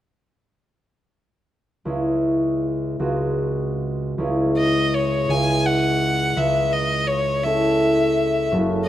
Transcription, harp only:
1.85 C#2 C#4 E4 G#4
3.00 C#2 C4 F#4 G#4
4.18 C#2 C#4 E4 G#4
5.29 C#2 C#4 E4 G#4
6.37 C#2
7.44 C#4 E4 A4
8.52 F#1 C#4 F#4 A4

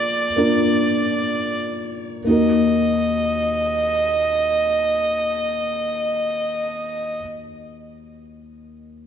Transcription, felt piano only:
Already playing: A#3 D4 F4 A#4
0.36 A#3 D4 F4 A#4
2.24 D#2 A#3 D#4
2.29 F#4 A#4

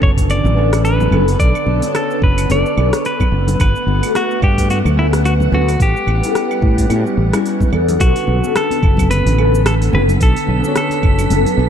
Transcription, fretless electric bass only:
0.02 F#1
0.44 A1
1.11 F#1
1.39 B1
1.66 B1
2.22 F#1
2.49 F#1
2.77 B1
3.32 F#1
3.60 G1
3.86 G1
4.42 G2
4.85 D2
5.52 D2
5.80 A1
6.07 A1
6.62 A2
6.90 A2
7.17 A1
7.72 E2
8.00 B1
8.27 B1
8.83 F#1
9.26 A1
9.93 F#1
10.20 B1
10.48 B1
11.03 F#1
11.30 F#1
11.57 B1

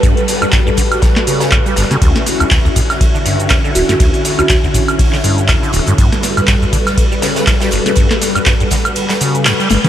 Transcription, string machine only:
Already playing: G3 F#4 A4 B4
2.02 D3 C#4 E4
5.99 G3 F#4 A4 B4

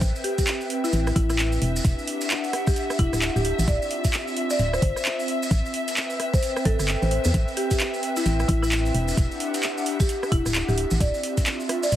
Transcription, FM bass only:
0.01 A1
0.93 A1
1.16 A1
1.62 E1
1.85 E1
2.99 E1
3.13 D1
3.36 D1
3.59 A1
3.68 D1
4.59 D1
4.82 G1
5.51 A1
6.65 A1
6.79 G1
7.02 A1
7.25 E2
7.34 A1
8.26 A1
8.49 A1
8.94 E1
9.17 E1
10.32 E1
10.46 D1
10.69 D1
10.91 A1
11.00 D1
11.92 D1

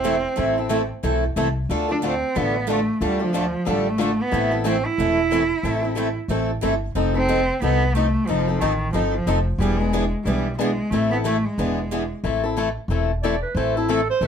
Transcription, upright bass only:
Already playing: E1
0.38 A1
1.03 B1
1.36 C2
1.69 D2
2.36 A1
3.01 D2
3.67 A1
4.32 A1
4.98 E1
5.63 A1
6.28 A1
6.63 G1
6.95 F1
7.62 C2
8.29 F1
8.61 A1
8.93 G1
9.27 F1
9.58 E1
10.25 B1
10.91 A1
11.58 E1
12.24 A1
12.88 E1
13.55 A1
14.21 E1

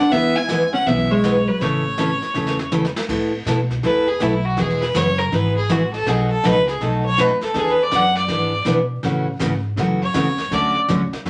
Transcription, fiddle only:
0.00 F#5
0.12 E5
0.36 G#5
0.74 F#5
0.87 E5
1.11 C#5
1.48 B4
1.61 C#5
3.85 B4
4.08 G#4
4.22 E4
4.45 F#4
4.60 G#4
4.82 B4
4.97 C#5
5.19 A#4
5.34 B4
5.56 G#4
5.71 F#4
5.93 A4
6.09 G#4
6.30 A4
6.45 B4
6.69 G#4
6.82 A4
7.06 C#5
7.20 B4
7.43 A4
7.58 G#4
7.71 B4
7.83 D5
7.95 F#5
8.18 D5
10.03 C#5
10.54 D5

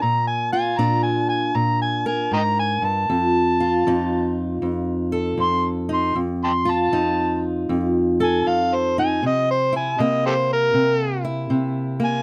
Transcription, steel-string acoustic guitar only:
0.02 A#2
0.53 F4
0.79 A#2 D4
1.55 A#2
2.06 A#4
2.31 G#2
2.82 G2
3.10 F2
3.60 F4
3.87 F2 D#4
4.62 F2
5.12 A4
5.38 F2
5.89 D#4
6.15 F2
6.65 F4
6.92 F2 D#4
7.69 F2
8.20 A4
8.46 F2
8.98 D#4
9.23 C3
9.73 E4
9.99 C3 A#3
10.74 C3
11.24 E4
11.50 C3
12.00 A#3

